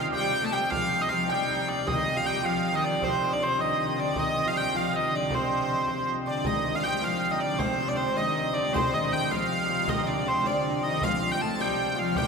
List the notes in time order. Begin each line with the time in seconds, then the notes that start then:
Already playing: C3 D#3 C4 D#4 F4 G4
0.11 G3 G4, frame drum
0.15 G5
0.41 A3 A4 A5
0.51 G3 G4 G5
0.70 F3 F4 F5, frame drum
0.92 frame drum
1.01 D#4 D#5
1.09 F3 F4 F5, frame drum
1.28 G3 G4 G5, frame drum
1.48 D#4, frame drum
1.69 D5, frame drum
1.86 C3 D#3 D#4 D#5, frame drum
2.15 F3 F4 F5
2.24 G3 G4 G5
2.43 F3 F4 F5, frame drum
2.73 D#3 D#4 D#5
2.84 D5
3.01 C3 C4 C5, frame drum
3.30 D3 D4 D5
3.39 C3 C5
3.59 D#3 D#4 D#5, frame drum
3.76 D#3 D#4
3.97 D3 D5
4.16 D#3 D#4 D#5, frame drum
4.45 F3 F4 F5
4.53 G3 G4
4.57 G5
4.73 F3 F4 F5, frame drum
4.93 D#3 D#4 D#5
5.11 D3 D4
5.15 D5
5.30 C3 C4 C5, frame drum
5.88 frame drum
6.26 D3 D4 D5, frame drum
6.45 C3 D#3 D#4 D#5, riq, frame drum
6.74 F4 F5
6.83 G3 G4 G5
7.02 F3 F4 F5, riq, frame drum
7.30 D#3 D#4 D#5
7.40 D3 D5
7.59 C3 C4 C5, riq, frame drum
7.88 D4 D5
7.97 C4 C5
8.17 D#3 D#4 D#5, riq, frame drum
8.37 D#4
8.53 D3 D4 D5
8.73 C3 C4 C5, riq, frame drum
8.92 D#3 D#4 D#5
9.12 G5
9.31 F3 F4 F5, riq, frame drum
9.64 G4
9.70 F4
9.88 D#3 D#4 D#5, riq, frame drum
10.07 D3 D4 D5
10.26 C3 C4 C5
10.44 D3 D4 D5, riq, frame drum
10.64 D4, riq
10.83 D#3 D#4 D#5
11.01 C3 F3 F4 F5, riq, frame drum
11.31 G3 G5
11.40 A3 A4 A5
11.58 G3 G4 G5, riq, frame drum
11.96 F3 F4 F5
12.15 G3 G4 G5, riq, frame drum